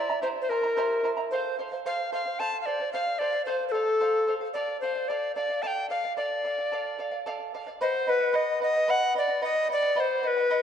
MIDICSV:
0, 0, Header, 1, 3, 480
1, 0, Start_track
1, 0, Tempo, 540541
1, 1160, Time_signature, 6, 3, 24, 8
1, 9431, End_track
2, 0, Start_track
2, 0, Title_t, "Charango"
2, 0, Program_c, 0, 24
2, 84, Note_on_c, 0, 82, 49
2, 92, Note_on_c, 0, 76, 41
2, 98, Note_on_c, 0, 64, 36
2, 189, Note_off_c, 0, 64, 0
2, 193, Note_off_c, 0, 82, 0
2, 195, Note_on_c, 0, 67, 64
2, 196, Note_off_c, 0, 76, 0
2, 199, Note_on_c, 0, 64, 61
2, 203, Note_on_c, 0, 72, 64
2, 203, Note_on_c, 0, 82, 75
2, 206, Note_on_c, 0, 76, 68
2, 432, Note_off_c, 0, 72, 0
2, 434, Note_off_c, 0, 64, 0
2, 436, Note_off_c, 0, 67, 0
2, 440, Note_off_c, 0, 76, 0
2, 441, Note_off_c, 0, 82, 0
2, 442, Note_on_c, 0, 72, 51
2, 445, Note_on_c, 0, 64, 54
2, 451, Note_on_c, 0, 76, 57
2, 456, Note_on_c, 0, 82, 59
2, 551, Note_off_c, 0, 82, 0
2, 557, Note_off_c, 0, 76, 0
2, 560, Note_off_c, 0, 72, 0
2, 561, Note_off_c, 0, 64, 0
2, 562, Note_on_c, 0, 82, 41
2, 567, Note_on_c, 0, 76, 43
2, 574, Note_on_c, 0, 64, 40
2, 673, Note_off_c, 0, 64, 0
2, 680, Note_off_c, 0, 82, 0
2, 681, Note_on_c, 0, 67, 70
2, 683, Note_off_c, 0, 76, 0
2, 684, Note_on_c, 0, 64, 68
2, 689, Note_on_c, 0, 72, 76
2, 693, Note_on_c, 0, 76, 77
2, 694, Note_on_c, 0, 82, 68
2, 910, Note_off_c, 0, 72, 0
2, 915, Note_off_c, 0, 64, 0
2, 917, Note_off_c, 0, 76, 0
2, 921, Note_off_c, 0, 67, 0
2, 921, Note_on_c, 0, 72, 44
2, 923, Note_off_c, 0, 82, 0
2, 926, Note_on_c, 0, 64, 48
2, 928, Note_on_c, 0, 76, 47
2, 933, Note_on_c, 0, 82, 54
2, 1027, Note_off_c, 0, 82, 0
2, 1035, Note_off_c, 0, 76, 0
2, 1038, Note_off_c, 0, 64, 0
2, 1038, Note_on_c, 0, 82, 39
2, 1040, Note_off_c, 0, 72, 0
2, 1046, Note_on_c, 0, 76, 38
2, 1049, Note_on_c, 0, 64, 35
2, 1159, Note_off_c, 0, 82, 0
2, 1163, Note_off_c, 0, 76, 0
2, 1165, Note_off_c, 0, 64, 0
2, 1175, Note_on_c, 0, 69, 62
2, 1179, Note_on_c, 0, 72, 65
2, 1181, Note_on_c, 0, 77, 62
2, 1398, Note_off_c, 0, 69, 0
2, 1405, Note_off_c, 0, 72, 0
2, 1409, Note_on_c, 0, 69, 52
2, 1412, Note_off_c, 0, 77, 0
2, 1416, Note_on_c, 0, 72, 52
2, 1424, Note_on_c, 0, 77, 51
2, 1516, Note_off_c, 0, 77, 0
2, 1525, Note_off_c, 0, 69, 0
2, 1526, Note_off_c, 0, 72, 0
2, 1527, Note_on_c, 0, 77, 47
2, 1536, Note_on_c, 0, 72, 35
2, 1641, Note_off_c, 0, 72, 0
2, 1644, Note_off_c, 0, 77, 0
2, 1648, Note_on_c, 0, 69, 62
2, 1652, Note_on_c, 0, 72, 63
2, 1654, Note_on_c, 0, 77, 73
2, 1874, Note_off_c, 0, 69, 0
2, 1878, Note_off_c, 0, 72, 0
2, 1884, Note_on_c, 0, 69, 51
2, 1886, Note_off_c, 0, 77, 0
2, 1889, Note_on_c, 0, 72, 50
2, 1897, Note_on_c, 0, 77, 58
2, 1992, Note_off_c, 0, 77, 0
2, 2003, Note_on_c, 0, 77, 47
2, 2004, Note_off_c, 0, 69, 0
2, 2004, Note_off_c, 0, 72, 0
2, 2015, Note_on_c, 0, 72, 36
2, 2122, Note_off_c, 0, 72, 0
2, 2123, Note_off_c, 0, 77, 0
2, 2128, Note_on_c, 0, 69, 60
2, 2132, Note_on_c, 0, 72, 72
2, 2134, Note_on_c, 0, 77, 67
2, 2354, Note_off_c, 0, 69, 0
2, 2361, Note_off_c, 0, 72, 0
2, 2364, Note_on_c, 0, 69, 42
2, 2365, Note_off_c, 0, 77, 0
2, 2371, Note_on_c, 0, 72, 55
2, 2375, Note_on_c, 0, 77, 50
2, 2478, Note_off_c, 0, 77, 0
2, 2485, Note_off_c, 0, 69, 0
2, 2488, Note_off_c, 0, 72, 0
2, 2489, Note_on_c, 0, 77, 45
2, 2499, Note_on_c, 0, 72, 36
2, 2603, Note_off_c, 0, 72, 0
2, 2604, Note_off_c, 0, 77, 0
2, 2607, Note_on_c, 0, 69, 62
2, 2614, Note_on_c, 0, 72, 62
2, 2615, Note_on_c, 0, 77, 71
2, 2833, Note_off_c, 0, 69, 0
2, 2840, Note_off_c, 0, 72, 0
2, 2843, Note_on_c, 0, 69, 45
2, 2848, Note_off_c, 0, 77, 0
2, 2851, Note_on_c, 0, 72, 51
2, 2858, Note_on_c, 0, 77, 54
2, 2946, Note_off_c, 0, 77, 0
2, 2956, Note_on_c, 0, 77, 47
2, 2960, Note_off_c, 0, 72, 0
2, 2965, Note_off_c, 0, 69, 0
2, 2970, Note_on_c, 0, 72, 39
2, 3071, Note_off_c, 0, 72, 0
2, 3079, Note_off_c, 0, 77, 0
2, 3079, Note_on_c, 0, 69, 57
2, 3081, Note_on_c, 0, 72, 64
2, 3089, Note_on_c, 0, 77, 65
2, 3304, Note_off_c, 0, 69, 0
2, 3315, Note_off_c, 0, 72, 0
2, 3315, Note_on_c, 0, 69, 48
2, 3316, Note_off_c, 0, 77, 0
2, 3325, Note_on_c, 0, 72, 52
2, 3327, Note_on_c, 0, 77, 58
2, 3431, Note_off_c, 0, 77, 0
2, 3440, Note_off_c, 0, 72, 0
2, 3441, Note_off_c, 0, 69, 0
2, 3441, Note_on_c, 0, 77, 43
2, 3451, Note_on_c, 0, 72, 37
2, 3549, Note_off_c, 0, 72, 0
2, 3554, Note_off_c, 0, 77, 0
2, 3557, Note_on_c, 0, 69, 62
2, 3560, Note_on_c, 0, 72, 67
2, 3564, Note_on_c, 0, 77, 73
2, 3783, Note_off_c, 0, 69, 0
2, 3791, Note_off_c, 0, 72, 0
2, 3794, Note_on_c, 0, 69, 51
2, 3797, Note_off_c, 0, 77, 0
2, 3801, Note_on_c, 0, 72, 52
2, 3808, Note_on_c, 0, 77, 53
2, 3904, Note_off_c, 0, 77, 0
2, 3914, Note_off_c, 0, 72, 0
2, 3915, Note_on_c, 0, 77, 45
2, 3921, Note_off_c, 0, 69, 0
2, 3925, Note_on_c, 0, 72, 38
2, 4034, Note_off_c, 0, 77, 0
2, 4038, Note_on_c, 0, 69, 64
2, 4043, Note_on_c, 0, 74, 65
2, 4044, Note_on_c, 0, 77, 72
2, 4047, Note_off_c, 0, 72, 0
2, 4272, Note_off_c, 0, 69, 0
2, 4278, Note_off_c, 0, 74, 0
2, 4282, Note_off_c, 0, 77, 0
2, 4283, Note_on_c, 0, 69, 50
2, 4289, Note_on_c, 0, 74, 51
2, 4293, Note_on_c, 0, 77, 55
2, 4388, Note_off_c, 0, 77, 0
2, 4399, Note_on_c, 0, 77, 44
2, 4405, Note_off_c, 0, 74, 0
2, 4406, Note_off_c, 0, 69, 0
2, 4416, Note_on_c, 0, 74, 37
2, 4518, Note_off_c, 0, 74, 0
2, 4524, Note_off_c, 0, 77, 0
2, 4525, Note_on_c, 0, 69, 61
2, 4528, Note_on_c, 0, 74, 71
2, 4535, Note_on_c, 0, 77, 65
2, 4749, Note_off_c, 0, 69, 0
2, 4753, Note_off_c, 0, 74, 0
2, 4760, Note_on_c, 0, 69, 54
2, 4761, Note_off_c, 0, 77, 0
2, 4764, Note_on_c, 0, 74, 51
2, 4772, Note_on_c, 0, 77, 57
2, 4873, Note_off_c, 0, 77, 0
2, 4883, Note_on_c, 0, 77, 46
2, 4884, Note_off_c, 0, 69, 0
2, 4884, Note_off_c, 0, 74, 0
2, 4895, Note_on_c, 0, 74, 39
2, 4995, Note_off_c, 0, 74, 0
2, 4997, Note_on_c, 0, 69, 67
2, 5000, Note_off_c, 0, 77, 0
2, 5006, Note_on_c, 0, 74, 73
2, 5011, Note_on_c, 0, 77, 76
2, 5228, Note_off_c, 0, 69, 0
2, 5236, Note_off_c, 0, 74, 0
2, 5239, Note_on_c, 0, 69, 49
2, 5243, Note_off_c, 0, 77, 0
2, 5247, Note_on_c, 0, 74, 53
2, 5253, Note_on_c, 0, 77, 53
2, 5351, Note_off_c, 0, 77, 0
2, 5360, Note_off_c, 0, 74, 0
2, 5361, Note_on_c, 0, 77, 47
2, 5364, Note_off_c, 0, 69, 0
2, 5370, Note_on_c, 0, 74, 41
2, 5472, Note_off_c, 0, 74, 0
2, 5476, Note_on_c, 0, 69, 62
2, 5481, Note_off_c, 0, 77, 0
2, 5482, Note_on_c, 0, 74, 66
2, 5492, Note_on_c, 0, 77, 66
2, 5709, Note_off_c, 0, 69, 0
2, 5716, Note_off_c, 0, 74, 0
2, 5719, Note_on_c, 0, 69, 50
2, 5726, Note_off_c, 0, 77, 0
2, 5727, Note_on_c, 0, 74, 48
2, 5736, Note_on_c, 0, 77, 53
2, 5836, Note_off_c, 0, 77, 0
2, 5844, Note_off_c, 0, 69, 0
2, 5847, Note_off_c, 0, 74, 0
2, 5847, Note_on_c, 0, 77, 46
2, 5862, Note_on_c, 0, 74, 39
2, 5966, Note_off_c, 0, 74, 0
2, 5966, Note_on_c, 0, 69, 56
2, 5968, Note_off_c, 0, 77, 0
2, 5977, Note_on_c, 0, 74, 66
2, 5979, Note_on_c, 0, 77, 67
2, 6191, Note_off_c, 0, 69, 0
2, 6200, Note_off_c, 0, 74, 0
2, 6202, Note_on_c, 0, 69, 52
2, 6206, Note_off_c, 0, 77, 0
2, 6210, Note_on_c, 0, 74, 58
2, 6217, Note_on_c, 0, 77, 62
2, 6307, Note_off_c, 0, 77, 0
2, 6318, Note_on_c, 0, 77, 50
2, 6321, Note_off_c, 0, 74, 0
2, 6325, Note_off_c, 0, 69, 0
2, 6332, Note_on_c, 0, 74, 38
2, 6443, Note_off_c, 0, 77, 0
2, 6445, Note_off_c, 0, 74, 0
2, 6448, Note_on_c, 0, 69, 77
2, 6455, Note_on_c, 0, 74, 82
2, 6458, Note_on_c, 0, 77, 76
2, 6688, Note_off_c, 0, 69, 0
2, 6691, Note_off_c, 0, 74, 0
2, 6692, Note_off_c, 0, 77, 0
2, 6697, Note_on_c, 0, 69, 49
2, 6701, Note_on_c, 0, 74, 56
2, 6703, Note_on_c, 0, 77, 60
2, 6798, Note_off_c, 0, 77, 0
2, 6809, Note_off_c, 0, 74, 0
2, 6809, Note_on_c, 0, 77, 50
2, 6812, Note_off_c, 0, 69, 0
2, 6820, Note_on_c, 0, 74, 42
2, 6928, Note_off_c, 0, 77, 0
2, 6933, Note_off_c, 0, 74, 0
2, 6933, Note_on_c, 0, 71, 63
2, 6941, Note_on_c, 0, 75, 68
2, 6942, Note_on_c, 0, 78, 74
2, 7155, Note_off_c, 0, 75, 0
2, 7156, Note_off_c, 0, 71, 0
2, 7164, Note_off_c, 0, 78, 0
2, 7166, Note_on_c, 0, 75, 52
2, 7167, Note_on_c, 0, 71, 53
2, 7175, Note_on_c, 0, 78, 60
2, 7272, Note_off_c, 0, 78, 0
2, 7281, Note_off_c, 0, 75, 0
2, 7283, Note_on_c, 0, 78, 44
2, 7286, Note_off_c, 0, 71, 0
2, 7292, Note_on_c, 0, 75, 39
2, 7390, Note_off_c, 0, 75, 0
2, 7394, Note_off_c, 0, 78, 0
2, 7396, Note_on_c, 0, 71, 69
2, 7400, Note_on_c, 0, 75, 69
2, 7404, Note_on_c, 0, 78, 71
2, 7627, Note_off_c, 0, 71, 0
2, 7637, Note_on_c, 0, 71, 52
2, 7640, Note_off_c, 0, 75, 0
2, 7641, Note_off_c, 0, 78, 0
2, 7651, Note_on_c, 0, 75, 53
2, 7652, Note_on_c, 0, 78, 58
2, 7749, Note_off_c, 0, 78, 0
2, 7760, Note_on_c, 0, 78, 50
2, 7761, Note_off_c, 0, 71, 0
2, 7763, Note_off_c, 0, 75, 0
2, 7773, Note_on_c, 0, 75, 41
2, 7879, Note_off_c, 0, 75, 0
2, 7882, Note_off_c, 0, 78, 0
2, 7885, Note_on_c, 0, 71, 73
2, 7890, Note_on_c, 0, 75, 71
2, 7897, Note_on_c, 0, 78, 76
2, 8108, Note_off_c, 0, 71, 0
2, 8118, Note_off_c, 0, 75, 0
2, 8119, Note_on_c, 0, 71, 52
2, 8121, Note_off_c, 0, 78, 0
2, 8128, Note_on_c, 0, 75, 58
2, 8132, Note_on_c, 0, 78, 54
2, 8229, Note_off_c, 0, 78, 0
2, 8240, Note_off_c, 0, 71, 0
2, 8240, Note_on_c, 0, 78, 51
2, 8242, Note_off_c, 0, 75, 0
2, 8252, Note_on_c, 0, 75, 35
2, 8352, Note_off_c, 0, 75, 0
2, 8361, Note_off_c, 0, 78, 0
2, 8361, Note_on_c, 0, 71, 65
2, 8363, Note_on_c, 0, 75, 69
2, 8370, Note_on_c, 0, 78, 72
2, 8591, Note_off_c, 0, 71, 0
2, 8598, Note_off_c, 0, 75, 0
2, 8602, Note_on_c, 0, 71, 50
2, 8605, Note_off_c, 0, 78, 0
2, 8609, Note_on_c, 0, 75, 59
2, 8614, Note_on_c, 0, 78, 52
2, 8715, Note_off_c, 0, 78, 0
2, 8721, Note_off_c, 0, 71, 0
2, 8724, Note_off_c, 0, 75, 0
2, 8725, Note_on_c, 0, 78, 51
2, 8737, Note_on_c, 0, 75, 42
2, 8835, Note_off_c, 0, 75, 0
2, 8840, Note_off_c, 0, 78, 0
2, 8840, Note_on_c, 0, 71, 70
2, 8846, Note_on_c, 0, 75, 75
2, 8850, Note_on_c, 0, 78, 72
2, 9070, Note_off_c, 0, 71, 0
2, 9079, Note_off_c, 0, 75, 0
2, 9080, Note_on_c, 0, 71, 52
2, 9084, Note_off_c, 0, 78, 0
2, 9090, Note_on_c, 0, 75, 58
2, 9093, Note_on_c, 0, 78, 59
2, 9197, Note_off_c, 0, 78, 0
2, 9199, Note_off_c, 0, 71, 0
2, 9203, Note_off_c, 0, 75, 0
2, 9207, Note_on_c, 0, 78, 52
2, 9220, Note_on_c, 0, 75, 38
2, 9320, Note_off_c, 0, 75, 0
2, 9322, Note_off_c, 0, 78, 0
2, 9324, Note_on_c, 0, 71, 73
2, 9330, Note_on_c, 0, 75, 72
2, 9331, Note_on_c, 0, 78, 82
2, 9431, Note_off_c, 0, 71, 0
2, 9431, Note_off_c, 0, 75, 0
2, 9431, Note_off_c, 0, 78, 0
2, 9431, End_track
3, 0, Start_track
3, 0, Title_t, "Recorder"
3, 0, Program_c, 1, 74
3, 0, Note_on_c, 1, 74, 82
3, 193, Note_off_c, 1, 74, 0
3, 198, Note_on_c, 1, 72, 76
3, 251, Note_off_c, 1, 72, 0
3, 369, Note_on_c, 1, 72, 53
3, 439, Note_on_c, 1, 70, 75
3, 452, Note_off_c, 1, 72, 0
3, 980, Note_off_c, 1, 70, 0
3, 1162, Note_on_c, 1, 72, 65
3, 1385, Note_off_c, 1, 72, 0
3, 1653, Note_on_c, 1, 77, 81
3, 1872, Note_off_c, 1, 77, 0
3, 1891, Note_on_c, 1, 77, 83
3, 2126, Note_on_c, 1, 81, 82
3, 2139, Note_off_c, 1, 77, 0
3, 2305, Note_off_c, 1, 81, 0
3, 2320, Note_on_c, 1, 77, 58
3, 2360, Note_on_c, 1, 74, 83
3, 2374, Note_off_c, 1, 77, 0
3, 2594, Note_off_c, 1, 74, 0
3, 2599, Note_on_c, 1, 77, 83
3, 2830, Note_on_c, 1, 74, 88
3, 2844, Note_off_c, 1, 77, 0
3, 3062, Note_off_c, 1, 74, 0
3, 3067, Note_on_c, 1, 72, 75
3, 3240, Note_off_c, 1, 72, 0
3, 3271, Note_on_c, 1, 72, 52
3, 3301, Note_on_c, 1, 69, 74
3, 3314, Note_off_c, 1, 72, 0
3, 3855, Note_off_c, 1, 69, 0
3, 4028, Note_on_c, 1, 74, 79
3, 4261, Note_off_c, 1, 74, 0
3, 4271, Note_on_c, 1, 72, 78
3, 4514, Note_on_c, 1, 74, 78
3, 4527, Note_off_c, 1, 72, 0
3, 4748, Note_off_c, 1, 74, 0
3, 4753, Note_on_c, 1, 74, 74
3, 4994, Note_on_c, 1, 81, 72
3, 5007, Note_off_c, 1, 74, 0
3, 5035, Note_on_c, 1, 79, 78
3, 5044, Note_off_c, 1, 81, 0
3, 5231, Note_off_c, 1, 79, 0
3, 5236, Note_on_c, 1, 77, 77
3, 5465, Note_off_c, 1, 77, 0
3, 5480, Note_on_c, 1, 74, 74
3, 6408, Note_off_c, 1, 74, 0
3, 6937, Note_on_c, 1, 72, 88
3, 7188, Note_on_c, 1, 71, 88
3, 7201, Note_off_c, 1, 72, 0
3, 7419, Note_on_c, 1, 75, 87
3, 7432, Note_off_c, 1, 71, 0
3, 7651, Note_off_c, 1, 75, 0
3, 7664, Note_on_c, 1, 75, 85
3, 7905, Note_on_c, 1, 78, 91
3, 7918, Note_off_c, 1, 75, 0
3, 8134, Note_off_c, 1, 78, 0
3, 8150, Note_on_c, 1, 74, 86
3, 8360, Note_off_c, 1, 74, 0
3, 8382, Note_on_c, 1, 75, 87
3, 8595, Note_off_c, 1, 75, 0
3, 8636, Note_on_c, 1, 74, 95
3, 8880, Note_on_c, 1, 72, 88
3, 8894, Note_off_c, 1, 74, 0
3, 9121, Note_on_c, 1, 71, 88
3, 9134, Note_off_c, 1, 72, 0
3, 9431, Note_off_c, 1, 71, 0
3, 9431, End_track
0, 0, End_of_file